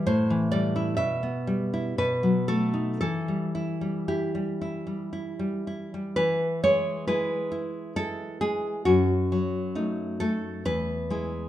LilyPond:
\new Staff \with { instrumentName = "Nylon-string guitar" } { \time 3/4 \key e \minor \tempo 4 = 65 << { c''8 d''8 e''4 b'8 a'8 | a'4 g'4. r8 | \key e \major b'8 cis''8 b'4 a'8 gis'8 | fis'4. a'8 b'4 | } \\ { a,16 e16 g16 e'16 b,16 b16 g16 e'16 b,16 fis16 a16 dis'16 | e16 g16 e'16 g16 e'16 g16 e'16 g16 e'16 g16 e'16 g16 | e8 gis8 <gis e'>8 e'8 <gis e'>8 gis8 | fis,8 fis8 <a dis'>8 a8 e,8 <gis e'>8 | } >> }